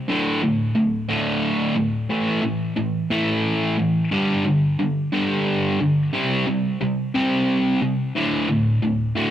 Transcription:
distorted electric guitar
0.08 D2 A2 D3
0.43 D2 A2
0.75 D2 A2
1.09 D2 A2 D3
1.76 D2 A2
2.10 A2 E3 A3
2.42 A2 E3
2.76 A2 E3
3.10 A2 E3 A3
3.79 A2 E3
4.11 G2 D3 G3
4.45 G2 D3
4.79 G2 D3
5.13 G2 D3 G3
5.80 G2 D3
6.14 C3 G3 C4
6.47 C3 G3
6.81 C3 G3
7.14 C3 G3 C4
7.81 C3 G3
8.15 D2 A2 D3
8.49 D2 A2
8.82 D2 A2
9.15 D2 A2 D3

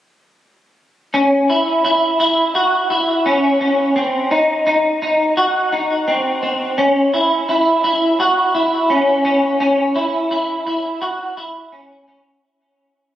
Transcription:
clean electric guitar
1.14 C#4
1.50 E4
1.85 E4
2.20 E4
2.55 F#4
2.90 E4
3.26 C#4
3.61 C#4
3.96 C4
4.31 D#4
4.67 D#4
5.02 D#4
5.37 F#4
5.72 D#4
6.08 C4
6.43 C4
6.78 C#4
7.14 E4
7.49 E4
7.84 E4
8.20 F#4
8.55 E4
8.90 C#4
9.25 C#4
9.60 C#4
9.96 E4
10.31 E4
10.67 E4
11.02 F#4
11.37 E4
11.72 C#4
12.08 C#4

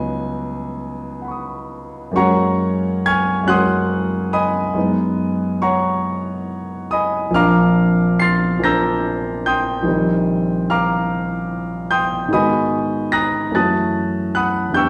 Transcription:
grand piano
Already playing: C#2 F#3 B3 C#4 D#4 D#5 G#5
1.22 F#5 B5
1.28 C#6 D#6
2.11 F#2 G#3 A#3 C#4
2.16 F#4 C#5 F#5 A#5 C#6
3.06 G#5 C#6 F6 G#6
3.43 F#2 G#3 A#3 C#4
3.48 F#4 F#5 C6 D#6 F#6
4.33 D#5 G#5 B5 D#6
4.73 F#2 G#3 B3
4.77 D#4
5.62 C#5 F#5 A#5 C#6
6.91 D#5 G#5 B5 D#6
7.31 A#1 F3 A#3 C4 F6
7.35 D4 F5 A#5 D6
8.19 C6 F6 A6 C7
8.59 A#1 F3 A#3 C4
8.64 D4 A#5 E6 G6 A#6
9.46 G5 C6 D#6 G6
9.82 A#1 D#3 G3 C4
9.87 D#4
10.70 F5 A#5 D6 F6
11.91 G5 C6 D#6 G6
12.28 G#2 D#3 G#3 B3
12.33 F#4 D#5 G#5 B5 D#6
13.12 A#5 D#6 F#6 A#6
13.51 F#2 E3 A3 C#4
13.55 F#4 A5 D#6 F#6 A6
14.35 F#5 B5 D#6 F#6
14.70 E2 E3 B3 D4
14.74 G4 G5 C#6 E6 G6

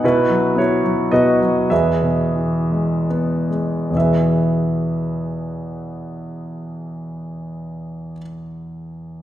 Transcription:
grand piano
0.04 B2 E4 F#4 B4
0.29 F#3
0.55 B3 E4 F#4 C#5
0.84 F#3
1.12 B2 F#4 B4 D#5
1.41 F#3
1.70 E2 G#4 B4 E5
2.02 B2
2.35 E3
2.71 G#3
3.10 B3
3.51 G#3
3.90 E2 B2
3.95 E3 B3 E5
3.99 G#4 B4

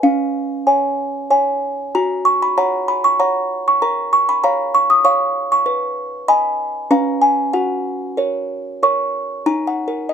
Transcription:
music box
0.03 C#4 F5
0.67 C#5 G#5
1.31 C#5 G#5
1.95 F#4 A#5
2.25 C#6
2.42 B5
2.58 C#5 F#5 A#5
2.88 B5
3.04 C#6
3.20 C#5 F#5 A#5
3.68 C#6
3.82 A#4 A#5
4.13 C#6
4.29 B5
4.44 C#5 F5 A#5
4.75 C#6
4.90 D#6
5.05 C#5 F5 C#6
5.52 C#6
5.66 B4
6.28 D#5 G#5 B5
6.91 C#4 B4 F5 A#5
7.22 G#5
7.53 F#4 F#5
8.17 A#4 C#5
8.83 A#4 C#5 C#6
9.46 D#4 A#5
9.67 F#5
9.88 A#4
10.09 D#5

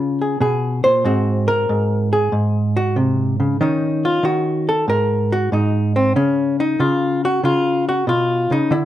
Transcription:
hollow-body jazz guitar
Already playing: C#3 C#4 F4
0.21 G#4
0.40 B2 G#4
0.84 A#2 C5
1.04 G#2 C4 F#4
1.48 A#4
1.69 G#2
2.13 G#4
2.32 G#2
2.77 F#4
2.96 C3
3.40 C#3
3.61 D#3 C#4 D#4
4.05 F4
4.23 D#3 F#4
4.69 A4
4.88 G#2 A#4
5.32 F#4
5.52 G#2 D#4
5.96 C4
6.16 C#3 C#4
6.60 D#4
6.80 C#3 F4
7.25 F#4
7.43 C#3 F4
7.89 F#4
8.07 B2 F4
8.51 C#3 D#4
8.71 D3 E4

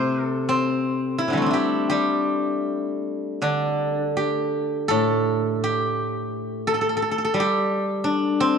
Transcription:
guzheng
Already playing: C3 E3 A3 E4 G4 A4 C5
0.25 A4
0.49 C4
1.18 E4
1.28 C3 D3
1.32 E3 G3
1.37 A3
1.42 C4
1.46 D4
1.51 E4 G4
1.90 G3 G4
3.42 D3 D4
4.17 G4
4.88 A2 A4
5.64 G4
6.67 A4
6.74 A4
6.81 A4
6.89 A4
6.97 A4
7.02 A4
7.11 A4
7.18 A4
7.25 A4
7.34 G3
7.40 G4
8.04 D4
8.40 C4

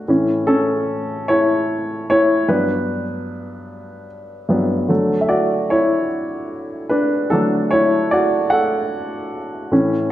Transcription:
upright piano
Already playing: A3 F#4
0.08 A2 E3 C#4
0.47 C#4 A4
1.28 E4 C#5
2.10 E4 C#5
2.48 G2 F#3 B3 D4 B4
4.49 G2 F#3 B3
4.88 D3 F#3 A3
5.21 E5
5.29 F#4 D5
5.70 E4 C#5
6.89 D4 B4
7.30 D3 F#3 A3 D4 A4
7.71 E4 C#5
8.11 F#4 D5
8.50 A4 F#5
9.72 A2 E3 C#4

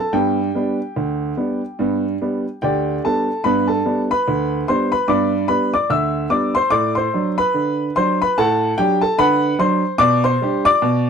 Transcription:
upright piano
Already playing: A5
0.00 A4
0.13 G2 B3 G4 G5
0.55 G3 B3 D4
0.96 D2
1.37 G3 B3 D4
1.79 G2 B3
2.21 G3 B3 D4
2.62 D2 G4 D5 G5
3.04 G3 B3 D4 A4 A5
3.44 G2 B3 B4 B5
3.68 A4 A5
3.85 G3 B3 D4
4.11 B4 B5
4.28 D2
4.68 G3 B3 D4 C5 C6
4.92 B4 B5
5.08 G2 B3 D5 B5 D6
5.48 G3 B3 D4 B4 B5
5.74 D5 D6
5.90 D2 E5 E6
6.30 G3 B3 D4 D5 D6
6.55 C5 C6
6.70 A2 D5 D6
6.95 C5 C6
7.14 F#3 D4
7.38 B4 B5
7.54 D3
7.96 F#3 D4 C5 C6
8.22 B4 B5
8.38 A2 A4 F#5 A5
8.78 F#3 D4 G4 G5
9.01 A4 A5
9.18 D3 B4 F#5 B5
9.59 F#3 D4 C5 C6
9.98 B2 D5 D6
10.24 C5 C6
10.42 G3 D4 G4
10.65 D5 D6
10.82 B2

